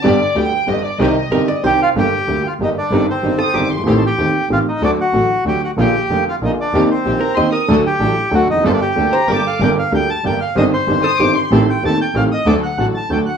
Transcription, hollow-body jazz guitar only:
X:1
M:3/4
L:1/16
Q:1/4=188
K:Cm
V:1 name="Hollow-body jazz guitar"
z12 | z4 B2 d2 c4 | [K:Gm] z12 | z6 A2 G4- |
G z8 z3 | z12 | z12 | z6 B2 e2 B2 |
z12 | z6 c2 B A3 | z12 | z6 A2 G4- |
G z8 z3 | z12 |]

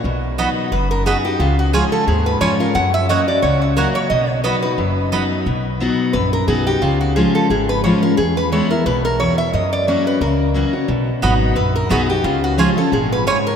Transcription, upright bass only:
X:1
M:4/4
L:1/8
Q:"Swing" 1/4=177
K:B
V:1 name="Upright bass" clef=bass
B,,,4 F,,,4 | C,,4 D,,2 ^E,,2 | F,,4 C,,4 | B,,,4 F,,,4 |
B,,,4 A,,,2 B,,,2 | C,,4 G,,,4 | E,,4 B,,,4 | F,,4 C,,4 |
B,,,2 G,,,2 A,,,2 B,,,2 | C,,4 G,,,4 |]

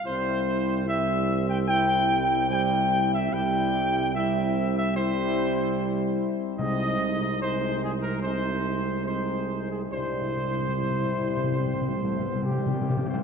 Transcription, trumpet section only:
X:1
M:4/4
L:1/16
Q:1/4=73
K:C
V:1 name="Trumpet section"
c4 e3 g g4 g3 e | g4 e3 e c6 z2 | _e4 c2 _A _B c4 c3 A | c12 G3 c |]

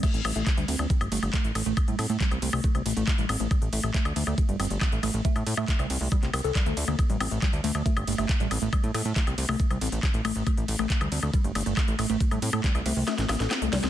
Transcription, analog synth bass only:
X:1
M:4/4
L:1/16
Q:1/4=138
K:Gmix
V:1 name="Analog synth bass" clef=bass
z A,,, A,,, A,,, z D,, D,, D,, z G,,, G,,, G,,, z A,,, A,,, A,,, | z A,, A,, A,, z C,, C,, C,, z C,, A,,, A,,, z A,,, A,,, A,,, | z A,,, A,,, A,,, z D,, D,, D,, z G,,, G,,, G,,, z A,,, A,,, A,,, | z A,, A,, A,, z C,, C,, C,, z C,, C,, C,, z D,, D,, D,, |
z A,,, A,,, A,,, z D,, D,, D,, z G,,, G,,, G,,, z A,,, A,,, A,,, | z A,, A,, A,, z C,, C,, C,, z C,, A,,, A,,, z A,,, A,,, A,,, | z A,,, A,,, A,,, z D,, D,, D,, z G,,, G,,, G,,, z A,,, A,,, A,,, | z A,, A,, A,, z C,, C,, C,, z A,,, A,,, A,,, z C,, C,, C,, |]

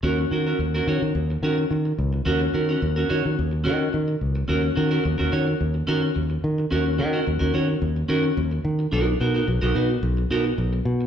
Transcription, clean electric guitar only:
X:1
M:4/4
L:1/16
Q:1/4=108
K:Ebm
V:1 name="Clean electric guitar"
[DGB] z [DGB] [DGB] z [DGB] [DGd] z3 [DGB] z4 z | [DGB] z [DGB] [DGB] z [DGB] [DGd] z3 [DGB] z4 z | [DGB] z [DGB] [DGB] z [DGB] [DGd] z3 [DGB] z4 z | [DGB] z [DGB] [DGB] z [DGB] [DGd] z3 [DGB] z4 z |
[^D^F^A] z [DFA] [DFA] z [DFA] [DF=B] z3 [DFA] z4 z |]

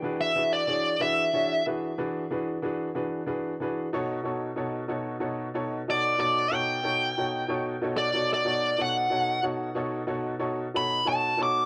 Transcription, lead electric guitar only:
X:1
M:12/8
L:1/16
Q:3/8=62
K:Bdor
V:1 name="Lead electric guitar"
=g e2 d3 e4 z12 z2 | z12 d2 d2 =g8- | =g d2 d3 f4 z8 b2 a2 d'2 |]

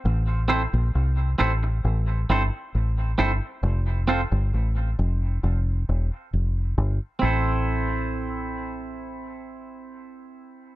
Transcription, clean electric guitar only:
X:1
M:4/4
L:1/8
Q:1/4=67
K:Am
V:1 name="Clean electric guitar"
z [CEAc] z [CEAc] z [CEAc] z [CEAc] | z [CFAc] z6 | [CEAc]8 |]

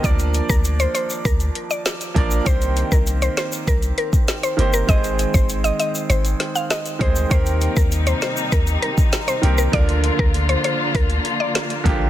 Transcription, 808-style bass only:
X:1
M:4/4
L:1/16
Q:1/4=99
K:Bbmix
V:1 name="808-style bass" clef=bass
D,,3 D,,3 z2 D,,2 z4 B,,,2 | C,,3 C,,3 z2 C,,2 z4 G,,,2 | A,,,3 A,,,3 z2 A,,,2 z4 D,,2 | E,,3 E,,3 z2 E,,2 z4 C,,2 |
D,,3 D,,3 z2 D,,2 z4 B,,,2 |]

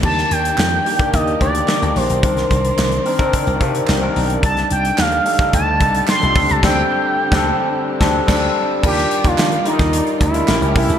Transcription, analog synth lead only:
X:1
M:4/4
L:1/16
Q:1/4=109
K:Eblyd
V:1 name="Analog synth lead"
a2 g6 e2 d4 c2- | c12- c2 z2 | a2 g2 f4 a4 c'3 a | g12 z4 |
G3 F3 E4 =E4 E2 |]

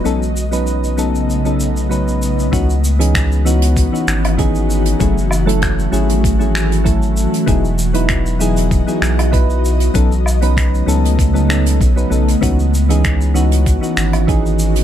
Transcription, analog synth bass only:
X:1
M:4/4
L:1/8
Q:"Swing 16ths" 1/4=97
K:C#m
V:1 name="Analog synth bass" clef=bass
B,,,8 | C,,4 z G,,,3 | F,,,3 G,,,4 z | E,,,4 z B,,,3 |
B,,,3 C,,3 B,,, B,,, | C,,4 z G,,,3 |]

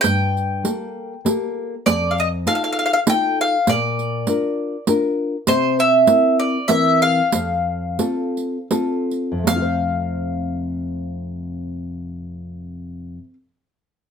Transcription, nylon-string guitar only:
X:1
M:3/4
L:1/8
Q:"Swing" 1/4=97
K:F
V:1 name="Nylon-string guitar"
G,,2 [B,GA]2 [B,GA]2 | F,,2 [_EFA]2 [EFA]2 | B,,2 [DFB]2 [DFB]2 | C,2 [CEB]2 [E,CB]2 |
F,,2 [CFA]2 [CFA]2 | [F,,C,A,CFc]6- | [F,,C,A,CFc]6 |]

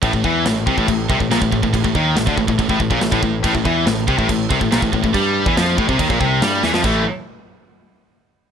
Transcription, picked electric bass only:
X:1
M:4/4
L:1/16
Q:1/4=141
K:Aphr
V:1 name="Picked electric bass" clef=bass
A,,, A,,, E,,2 A,,,2 C,, A,,, A,,,2 C,, A,,, B,,, A,,, A,,, A,,, | A,,, A,,, ^D,,2 A,,, =D,, A,,, A,,, A,,, A,,, A,,, B,,, A,,, A,,, A,,,2 | A,,, A,,, E,,2 A,,,2 C,, A,,, A,,,2 C,, A,,, B,,, A,,, A,,, A,,, | G,,3 E,, F,,2 A,,, C,, ^D,, B,,, C,,2 G,,2 E,, F,, |
A,,,2 z12 z2 |]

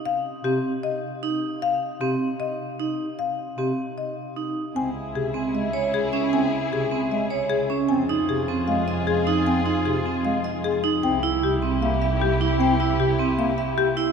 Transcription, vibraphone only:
X:1
M:4/4
L:1/8
Q:1/4=153
K:Cphr
V:1 name="Vibraphone"
z2 C z3 E z | z2 C z3 E z | z2 C z3 E z | z3 C z d z D |
z3 C z d z D | z E z C z e z E | z E z C z e z E | z =E z C z =e z E |
z =E z C z =e z E |]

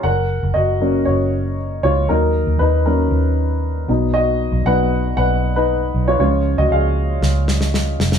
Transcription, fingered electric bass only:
X:1
M:4/4
L:1/16
Q:1/4=117
K:F#
V:1 name="Fingered electric bass" clef=bass
F,,,3 F,,, F,,,4 F,,,6 C,,2 | D,,3 D,, D,,4 D,,6 B,,,2- | B,,,3 B,,, B,,,4 B,,,6 B,,,2 | C,,3 C,, C,,4 C,,6 E,,,2 |]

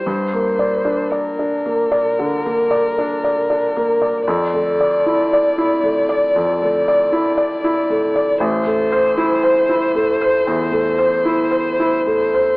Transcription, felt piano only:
X:1
M:4/4
L:1/16
Q:1/4=58
K:Gdor
V:1 name="Felt piano"
G,, B, d D d D B, d D, B, d D d D B, d | F,, A, d E d E A, d F,, A, d E d E A, d | A,,, A, c E c E A, c E,, A, c E c E A, c |]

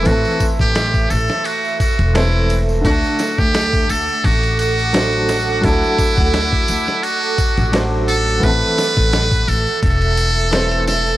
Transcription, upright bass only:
X:1
M:4/4
L:1/16
Q:"Swing 16ths" 1/4=86
K:Ador
V:1 name="Upright bass" clef=bass
A,,, z2 A,,,3 A,,, z4 E,,,4- E,,, | D,, z2 D,,3 D,, z A,,,8 | D,, z2 D,,3 D,, z4 A,,,4- A,,, | A,,, z2 A,,,3 A,,, z E,,,8 |]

